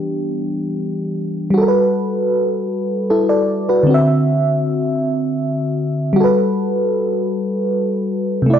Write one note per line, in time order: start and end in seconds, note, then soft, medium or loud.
0.00 1.51 E3 soft
0.00 1.49 G3 soft
0.00 0.75 B3 soft
0.00 1.52 D4 soft
0.00 0.73 G4 medium
1.50 3.80 G3 medium
1.50 2.68 F#4 medium
1.58 2.70 A4 medium
1.58 1.65 A#4 medium
1.68 2.75 B4 medium
3.10 3.28 E4 medium
3.10 3.28 A4 medium
3.29 3.66 A4 medium
3.29 3.65 D5 medium
3.69 3.89 F#4 medium
3.69 4.05 B4 medium
3.83 6.11 D3 medium
3.83 6.13 C4 medium
3.90 6.15 F#4 medium
3.90 6.17 E5 medium
6.13 8.42 G3 medium
6.13 8.43 F#4 medium
6.20 8.45 A4 medium
6.20 8.47 B4 medium
8.42 8.59 C3 medium
8.46 8.59 A3 medium
8.46 8.59 E4 medium
8.54 8.59 D5 medium